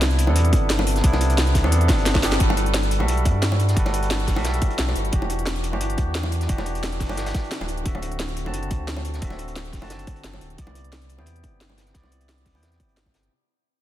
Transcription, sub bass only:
Already playing: C2
0.28 E2
0.53 G1
1.04 C2
1.64 E2
1.89 G1
2.40 G1
3.00 B1
3.26 G2
3.77 G1
4.37 B1
4.79 B1
4.96 G1
5.13 E1
5.73 G1
5.98 E2
6.49 E1
7.09 G1
7.60 D1
7.86 D1
8.46 F#1
8.71 D2
9.22 D1
9.82 F#1
10.24 F#1
10.41 D1
10.59 C2
11.19 E2
11.44 G1
11.95 C2
12.55 E2
12.80 G1

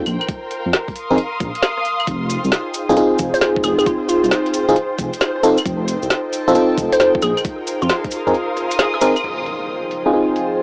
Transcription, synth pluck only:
3.34 C5
3.42 C5
3.64 G#4
3.79 G#4
3.86 F4
4.09 F4
4.24 F4
6.93 C5
7.00 C5
7.22 G#4
7.82 F4
8.79 G#4
8.94 G#4

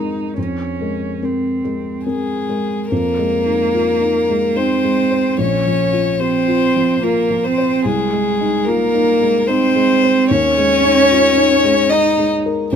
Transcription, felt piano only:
Already playing: F2 G#3 C4 A#4
0.37 F2
0.81 G#3 A#4
1.23 C4 A#4
1.64 G#3 A#4
2.06 C4 A#4
2.49 G#3 A#4
2.92 F2
3.18 G#3
3.46 D#4
3.74 F4
4.01 D#4
4.29 G#3
4.56 D#4
4.84 G#3
5.11 C5
5.38 A#1
5.66 F3
5.93 F4
6.20 G4
6.48 F4
6.76 F3
7.03 F4
7.30 F3
7.58 C5
7.85 C2
8.12 G#3
8.41 D#4
8.67 F4
8.94 D#4
9.21 G#3
9.49 D#4
9.75 G#3
10.03 C5
10.31 D#2
10.57 G#3
10.84 D#4
11.11 F4
11.37 D#4
11.64 G#3
11.91 D#4
12.18 G#3
12.46 A#4
12.72 F2

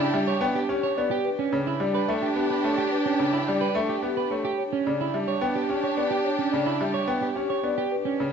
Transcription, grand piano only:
0.14 G3
0.41 B3
0.69 C#4
0.98 B3
1.53 C#3
1.80 G3
2.08 A3
2.36 B3
2.64 A3
3.19 C#3
3.48 G3
3.75 A3
4.03 B3
4.31 A3
4.87 C#3
5.14 G3
5.41 B3
5.69 C#4
5.97 B3
6.53 C#3
6.81 G3
7.08 B3
7.36 C#4
7.64 B3
8.20 C#3

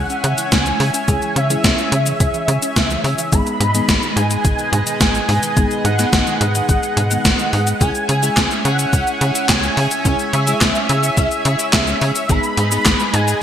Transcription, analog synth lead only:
Already playing: F#5
0.52 G#5
1.36 E5
3.32 B5
4.17 G#5
5.01 G#5
5.85 F#5
7.81 G#5
8.65 F#5
9.49 G#5
10.33 E5
12.30 B5
13.13 G#5

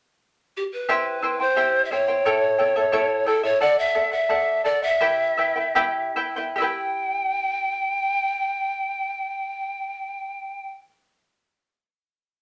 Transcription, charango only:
0.89 E4 G4 C5 E5 G5
1.22 E4 C5 E5 G5
1.40 E4 C5 G5
1.56 E4 G4 C5 E5 G5
1.91 E4 C5 E5 G5
2.08 E4 C5 G5
2.25 E4 A4 C#5 E5 G5
2.58 E4 A4 E5 G5
2.76 E4 A4 E5
2.92 E4 A4 C#5 E5 G5
3.26 E4 A4 E5 G5
3.43 E4 A4 E5
3.60 A4 D5 F#5
3.95 A4 D5 F#5
4.11 D5 F#5
4.29 A4 D5 F#5
4.64 A4 D5 F#5
4.82 D5 F#5
5.01 E4 G4 B4 E5 G5
5.37 E4 B4 E5 G5
5.56 E4 B4 G5
5.75 E4 G4 B4 E5 G5
6.16 E4 B4 E5 G5
6.36 E4 B4 G5
6.56 G4 E5
6.60 E4 B4 G5

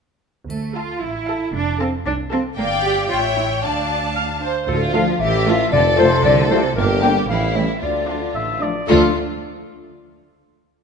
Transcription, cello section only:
0.50 A3
0.76 F4
1.02 E4
1.55 D4
1.81 C4
2.06 D4
2.33 C4
2.58 A#3
2.84 G4
3.10 F4
3.36 E4
3.63 D4
4.69 A2
4.95 F3
5.21 E3
5.73 D3
5.99 C3
6.25 D3
6.51 C3
6.77 A#2
7.03 G3
7.30 F3
7.56 E3
7.82 D3
8.89 D3

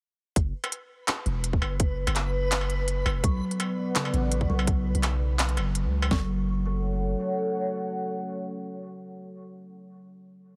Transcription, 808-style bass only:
0.36 F#1
1.26 E1
1.62 F#1
2.07 F#1
3.06 F#1
3.15 E1
3.24 B1
4.13 A1
4.50 B1
4.95 B1
5.57 F#1
5.84 C#2
6.11 F#1

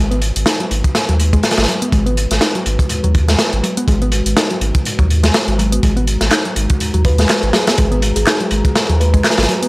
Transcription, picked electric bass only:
0.11 B3
0.46 D#4
0.60 F#3
1.09 F#3
1.33 G#3
1.68 F#3
1.82 B3
1.93 G#3
2.06 B3
2.41 D#4
2.55 F#3
3.04 F#3
3.28 G#3
3.63 F#3
3.77 B3
3.88 G#3
4.02 B3
4.37 D#4
4.51 F#3
4.99 F#3
5.23 G#3
5.59 F#3
5.72 B3
5.83 G#3
5.97 B3
6.32 D#4
6.45 F#3
6.94 F#3
7.19 G#3
7.53 F#3
7.67 B3
7.78 G#3
7.92 B3
8.27 D#4
8.40 F#3
8.89 F#3
9.13 G#3
9.49 F#3
9.62 B3

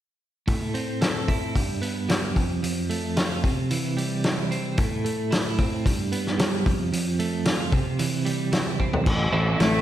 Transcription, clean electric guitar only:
0.47 A2
0.74 C4
1.01 A4
1.28 E4
1.55 G2
1.82 B3
2.09 G3
2.35 F2
2.63 F2
2.90 A3
3.17 F4
3.44 C3
3.71 E3
3.97 G3
4.25 E3
4.51 C4
4.78 A2
5.05 A3
5.31 E4
5.58 C4
5.85 G2
6.12 B3
6.38 G3
6.66 F2
6.93 F2
7.19 A3
7.46 F4
7.72 C3
7.99 E3
8.25 G3
8.52 E3
8.80 C4
9.33 E3 A3 C4 E4
9.59 E3 A3 C4 E4

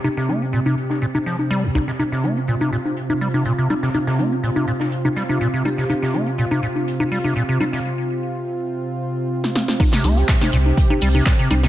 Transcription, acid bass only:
0.04 C3
0.17 C3
0.29 A#3
0.42 D#4
0.53 A#2
0.66 C3
1.02 A#2
1.15 C3
1.26 F3
1.51 G3
1.63 C2
1.75 C2
1.88 C3
1.99 C3
2.12 C3
2.24 A#3
2.37 D#4
2.48 A#2
2.61 C3
2.73 A#2
3.10 C3
3.21 G3
3.34 C3
3.46 A#2
3.58 C3
3.70 G3
3.83 C3
3.94 C3
4.07 C3
4.19 A#3
4.32 D#4
4.43 A#2
4.56 C3
4.68 A#2
5.05 C3
5.16 G3
5.29 C3
5.41 A#2
5.54 C3
5.65 G3
5.78 C3
5.90 C3
6.02 C3
6.14 A#3
6.27 D#4
6.38 A#2
6.51 C3
6.63 A#2
7.00 C3
7.12 G3
7.24 C3
7.36 A#2
7.49 C3
7.60 G3
7.73 C3
9.80 C3
9.93 C3
10.04 A#3
10.17 D#4
10.29 A#2
10.41 C3
10.53 A#2
10.90 C3
11.02 G3
11.15 C3
11.26 A#2
11.39 C3
11.51 G3
11.63 C3

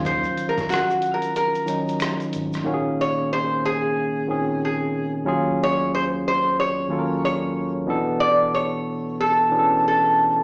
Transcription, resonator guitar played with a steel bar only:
0.06 C5
0.49 A#4
0.70 F#4
1.14 A#4
1.36 A#4
3.01 C#5
3.33 C5
3.65 G#4
4.65 G#4
5.63 C#5
5.95 C5
6.28 C5
6.60 C#5
7.25 C#5
8.20 D5
8.54 C#5
9.21 A4
9.88 A4

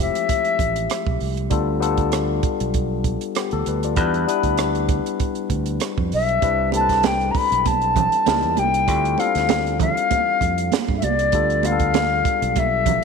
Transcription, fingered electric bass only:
0.59 A1
1.07 B1
1.21 C2
1.51 D2
2.43 muted fingered electric bass stroke
2.61 B1
3.53 D2
3.67 D2
3.97 E2
4.44 D2
5.51 D2
5.98 F2
6.13 B1
6.43 C2
7.35 muted fingered electric bass stroke
7.52 B1
8.27 C#2
8.43 E2
8.58 C2
8.88 D2
9.35 D2
10.41 F2
10.89 G2
11.03 C2
11.33 D2
12.26 muted fingered electric bass stroke
12.42 B1

